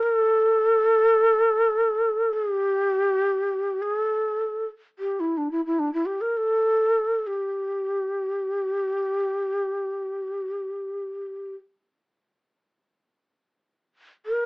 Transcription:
0.03 A#4
0.15 A4
2.33 G#4
2.51 G4
3.82 G#4
3.97 A4
4.99 G4
5.20 E4
5.37 D4
5.51 E4
5.66 E4
5.79 D4
5.94 E4
6.06 G4
6.21 A#4
6.37 A4
7.27 G4
14.26 A#4

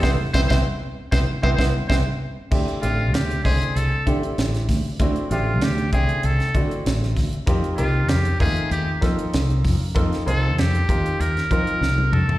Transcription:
0.03 C2 B3 C4 E4 C5, kick, snare
0.34 C2 B3 C4 E4 C5, kick, snare
0.48 C2 B3 C4 E4 C5, kick, snare
1.12 C2 B3 C4 E4 C5, kick, snare
1.43 C2 B3 C4 E4 C5, kick
1.56 C2 B3 C4 E4 C5, kick, snare
1.88 C2 B3 C4 E4 C5, kick, snare
2.51 D2 A3 C4 D4 E4 G4, kick, crash
2.68 closed hi-hat
2.82 A1 A3 C4 D4 F4 G4 E5, closed hi-hat
3.13 D2 G4, snare, closed hi-hat
3.31 closed hi-hat
3.45 C2 A3 C4 D4 E4 G#4 C5, kick, open hi-hat
3.62 closed hi-hat
3.75 C2 A4, closed hi-hat
4.06 D3 A3 C4 D4 E4 G4, kick, closed hi-hat
4.23 muted fretless electric bass stroke, closed hi-hat
4.38 A1, snare, closed hi-hat
4.54 snare, closed hi-hat
4.69 D2, kick, snare, open hi-hat
4.85 muted fretless electric bass stroke
4.99 D2 A3 C4 D4 E4 F#4, kick, closed hi-hat
5.16 closed hi-hat
5.30 A1 A3 C4 D4 F4 G4 E5, closed hi-hat
5.61 D2 G4, snare, closed hi-hat
5.78 closed hi-hat
5.93 C2 A3 C4 D4 E4 G#4 G5, kick, closed hi-hat
6.09 closed hi-hat
6.23 C2 A4, closed hi-hat
6.40 snare, closed hi-hat
6.55 D3 A3 C4 D4 E4 F#4, kick, closed hi-hat
6.71 muted fretless electric bass stroke, closed hi-hat
6.86 A1, snare, closed hi-hat
7.03 snare
7.16 D2, kick, snare, open hi-hat
7.33 muted fretless electric bass stroke, closed hi-hat
7.46 F2 A#3 C4 D#4 F4 G4, kick, closed hi-hat
7.64 closed hi-hat
7.77 C2 A#3 C4 D#4 F4 G4, closed hi-hat
8.09 F2 G4, snare, closed hi-hat
8.25 closed hi-hat
8.40 D#2 A3 A#3 C4 D#4 F4 G#4, kick, open hi-hat
8.57 closed hi-hat
8.71 D#2 G4, closed hi-hat
9.01 F3 A#3 C4 D#4 F4 A4, kick, snare, closed hi-hat
9.19 muted fretless electric bass stroke, closed hi-hat
9.34 C2, snare, closed hi-hat
9.50 closed hi-hat
9.65 F2, kick, snare, open hi-hat
9.81 muted fretless electric bass stroke
9.95 F2 A#3 C4 D#4 F4 A4, kick, closed hi-hat
10.13 snare, closed hi-hat
10.26 C2 A#3 C4 D#4 F4 A4 C5, closed hi-hat
10.57 F2 G4, snare, closed hi-hat
10.75 closed hi-hat
10.89 D#2 A#3 C4 D#4 F4 G4, kick, closed hi-hat
11.06 closed hi-hat
11.20 D#2 A#4, closed hi-hat
11.37 snare, closed hi-hat
11.51 F3 A#3 C4 D#4 F4 A#4, kick, closed hi-hat
11.67 muted fretless electric bass stroke, closed hi-hat
11.81 C2, snare
11.98 high tom
12.12 F2 A4, mid tom
12.29 muted fretless electric bass stroke, floor tom

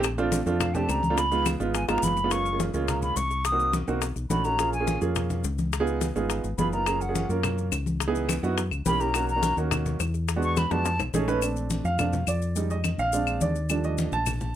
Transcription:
Already playing: A#1
0.03 high bongo, high conga, claves, maracas
0.18 A3 C4 D4 F4, high bongo, high conga, maracas
0.32 high bongo, high conga, maracas
0.46 F2 A3 C4 D4 F4, high conga, maracas
0.60 F5, high bongo, high conga, low conga, claves, maracas
0.74 A3 C4 D4 G4 A5, high bongo, high conga, low conga, maracas
0.89 C#2 A#5, high bongo, low bongo, high conga, claves, maracas
1.03 high bongo, high conga, maracas
1.10 A3 C4 D4 F4
1.18 B5, high bongo, maracas
1.31 G#3 B3 D#4 F4, high bongo, high conga, maracas
1.46 high bongo, high conga, claves, maracas
1.60 G#1 G#3 B3 D#4 F4, high conga, maracas
1.74 G#5, high bongo, high conga, maracas
1.88 G#1 G#3 B3 D#4 F4 A#5, high bongo, high conga, claves, maracas
1.98 high bongo
2.02 F#1 B5, high conga, maracas
2.08 low bongo
2.17 low bongo, high conga, maracas
2.24 G#3 B3 D#4 F4
2.31 G#3 A#3 C#4 F4 C#6, high bongo, high conga, maracas
2.46 high bongo, high conga, maracas
2.52 G#3 A#3 C#4 F4
2.60 high bongo, high conga, maracas
2.73 C#2 G#3 A#3 C#4 F4, high conga, maracas
2.88 A#5, high bongo, high conga, low conga, maracas
3.02 B5, high bongo, high conga, low conga, maracas
3.16 C2 C#6, high bongo, low bongo, high conga, maracas
3.31 high bongo, maracas
3.45 D#6, high bongo, high conga, maracas
3.52 A#3 C4 D#4 F#4
3.59 high bongo, high conga, maracas
3.73 high bongo, high conga, maracas
3.88 B1 A#3 C4 D#4 F#4, high conga, maracas
4.02 high bongo, high conga, maracas
4.16 B1, high bongo, high conga, maracas
4.30 A#1 A3 C#4 D#4 F#4 B5, high bongo, low bongo, high conga, maracas
4.44 A3 C#4 D#4 F#4 A#5, high bongo, high conga, maracas
4.59 A#3 C#4 F4 G#4, high bongo, high conga, maracas
4.73 G#5, high bongo, high conga, maracas
4.80 A#3 C#4 F4 G#4
4.87 high bongo, high conga, maracas
5.01 F2 A#3 C#4 F4 G#4, high conga, maracas
5.15 high bongo, high conga, low conga, maracas
5.30 high bongo, high conga, low conga, maracas
5.44 C#2, high bongo, low bongo, high conga, maracas
5.58 high bongo, high conga, maracas
5.73 high bongo, high conga, maracas
5.80 B3 D#4 F4 G#4
5.87 high bongo, high conga, maracas
6.01 high bongo, high conga, maracas
6.15 G#1 B3 D#4 F4 G#4, high conga, maracas
6.30 high bongo, high conga, maracas
6.44 G#1, high bongo, high conga, maracas
6.58 F#1 B3 D#4 F4 G#4 B5, high bongo, low bongo, high conga, maracas
6.72 B3 D#4 F4 A#4 A#5, high bongo, high conga, maracas
6.86 A#3 C#4 F4 G#4, high bongo, high conga, claves, maracas
7.01 F#5, high bongo, high conga, maracas
7.09 A#3 C#4 F4 G#4
7.15 high bongo, high conga, maracas
7.29 F#2 A#3 C#4 F4 A#4, high conga, maracas
7.43 high bongo, high conga, low conga, claves, maracas
7.58 high bongo, high conga, maracas
7.72 C#2, high bongo, low bongo, high conga, claves, maracas
7.86 high bongo, high conga, maracas
8.00 high bongo, maracas
8.07 B3 D#4 E4 G#4
8.15 high bongo, high conga, maracas
8.29 high bongo, high conga, claves, maracas
8.43 F#2 B3 D#4 E4 F#4, high conga, maracas
8.58 high bongo, high conga, maracas
8.71 C#2, high bongo, high conga, claves, maracas
8.85 B1 A#3 C#4 E4 G4 B5, high bongo, low bongo, high conga, maracas
9.00 A#3 C#4 E4 G4 A#5, high bongo, high conga, maracas
9.14 A#3 C#4 D#4 F#4, high bongo, high conga, claves, maracas
9.28 A#5, high bongo, high conga, maracas
9.36 A#3 C#4 D#4 F#4
9.43 high bongo, high conga, maracas
9.57 D#2 A#3 C#4 D#4 F#4, high conga, maracas
9.71 high bongo, high conga, low conga, claves, maracas
9.85 high bongo, high conga, low conga, maracas
10.00 E2, high bongo, low bongo, high conga, claves, maracas
10.14 high bongo, maracas
10.28 high bongo, high conga, maracas
10.36 G#3 B3 D4 F#4
10.42 C#6, high bongo, high conga, maracas
10.56 B5, high bongo, high conga, claves, maracas
10.71 F2 G#3 B3 D4 F#4 A5, high bongo, high conga, maracas
10.85 high bongo, high conga, maracas
10.99 B1, low bongo, high conga, claves, maracas
11.13 A#1 A3 C#4 D#4 G#4, low bongo, high conga, maracas
11.28 A3 C#4 D#4 B4, low bongo, high conga, maracas
11.42 A3 C4 D4, claves, maracas
11.56 high conga, maracas
11.70 high conga, maracas
11.84 F2 F5, high conga, maracas
11.99 A3 C4 D4, high conga, low conga, claves, maracas
12.13 high conga, low conga, maracas
12.27 F2 D5, high conga, claves, maracas
12.42 maracas
12.56 G3 G#3 D#4, high conga, maracas
12.70 D#5, high conga, maracas
12.84 high conga, claves, maracas
12.98 A#1 F5, high conga, maracas
13.13 G#3 C4 D4, high conga, maracas
13.27 high conga, claves, maracas
13.41 D#2 D5, high conga, maracas
13.55 high conga, maracas
13.69 F3 G3 A3 D4, claves, maracas
13.84 D#5, high conga, maracas
13.98 high conga, maracas
14.12 A#1 A5, high conga, maracas
14.26 high conga, low conga, claves, maracas
14.41 high conga, low conga, maracas

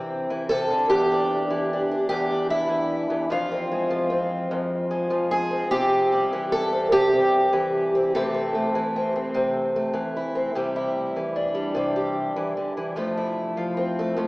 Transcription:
Already playing: C3 E3 C4 E4
0.30 E3
0.49 C3 A4
0.71 D3
0.90 E2 G4
1.12 D4
1.50 E3
1.73 D4
1.91 D4
2.09 E2 G4
2.31 D4
2.50 E4
2.69 E3
3.10 E2
3.30 F2 F4
3.52 C4
3.71 G#3
3.90 F3
4.10 C4
4.51 F2
4.91 G#3
5.10 F3
5.31 G#4
5.51 C4
5.71 C3 G4
6.12 G3
6.33 E3
6.52 A4
6.73 C4
6.92 C3 G4
7.14 C4
7.53 E3
7.95 C4
8.15 C3 E3 A3 C4 A4
8.34 C4
8.55 A3
8.75 E3
8.96 C4
9.16 C4
9.34 C3
9.76 A3
9.93 E3
10.16 E4
10.35 C4
10.55 C3 G3
10.76 E4
11.16 E3
11.36 D4
11.55 G3
11.75 C3 G3
11.96 G4
12.36 E3
12.57 D3
12.77 E3
12.96 F2 A3
13.17 E4
13.57 F3
13.77 C4
13.99 A3
14.17 F2 A3

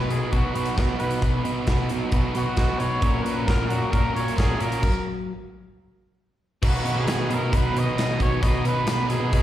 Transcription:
Already playing: B2 F#3 B3 D#4 F#4 B4
0.09 B2 G#4, closed hi-hat
0.32 B2 F#3 B3 D#4 F#4 B4, kick, closed hi-hat
0.54 B2 B3 D#4 F#4 B4, closed hi-hat
0.65 closed hi-hat
0.77 B2 B3 D#4 F#4 B4, kick, snare, closed hi-hat
0.98 B2 B3 D#4 F#4 B4, closed hi-hat
1.11 closed hi-hat
1.21 B2 F#3 B3 D#4 F#4 B4, kick, closed hi-hat
1.44 B2 B3 D#4 F#4 B4, closed hi-hat
1.67 B2 B3 D#4 F#4 B4, kick, snare, closed hi-hat
1.89 B2, closed hi-hat
2.11 B2 F#3 B3 D#4 F#4 B4, kick, closed hi-hat
2.34 B2 B3 D#4 F#4 B4, closed hi-hat
2.56 B2 B3 D#4 F#4 B4, kick, snare, closed hi-hat
2.79 B2 B3 D#4 F#4 B4 C#5, closed hi-hat
3.01 A#2 A#3 C#4 F#4 A#4, kick, closed hi-hat
3.20 A#4 B4
3.24 A#2 C#4 F#4, closed hi-hat
3.46 A#2 A#3 C#4 F#4 A#4, kick, snare, closed hi-hat
3.68 A#2 F#4, closed hi-hat
3.91 A#2 A#3 C#4 F#4 A#4, kick, closed hi-hat
4.14 A#2 C#4 F#4 A#4 C#5, closed hi-hat
4.28 closed hi-hat
4.36 A#2 A#3 C#4 F#4 G#4 A#4, kick, snare, closed hi-hat
4.58 A#2 C#4 F#4 A#4, closed hi-hat
4.72 closed hi-hat
4.83 kick, crash
6.62 B2 D#3 F#3 B3 D#4 B4, kick, crash
6.68 F#4
6.85 B2 D#3 F#3 B3 D#4 B4, closed hi-hat
6.96 B2
7.00 G#4
7.07 B2 D#3 F#3 B3 D#4 B4, snare, closed hi-hat
7.29 B2 D#3 F#3 B3 D#4 B4, closed hi-hat
7.34 A#4
7.40 B2
7.51 B2 D#3 F#3 B3 D#4 B4, kick, closed hi-hat
7.56 B4
7.72 B2 D#3 F#3 B3 D#4 B4
7.76 D#5, closed hi-hat
7.86 B2
7.96 B2 D#3 F#3 B3 D#4 B4, snare, closed hi-hat
8.20 B2 D#3 F#3 B3 D#4 B4 C#5, kick, closed hi-hat
8.32 B2
8.41 B2 D#3 F#3 B3 D#4 B4 D#5, kick, closed hi-hat
8.64 B2 D#3 F#3 B3 D#4 B4, closed hi-hat
8.76 B2
8.87 B2 D#3 F#3 B3 D#4 B4, snare, closed hi-hat
9.09 B2 D#3 F#3 B3 D#4 G#4 B4, closed hi-hat
9.20 B2
9.33 B2 D#3 F#3 B3 D#4 B4, kick, closed hi-hat

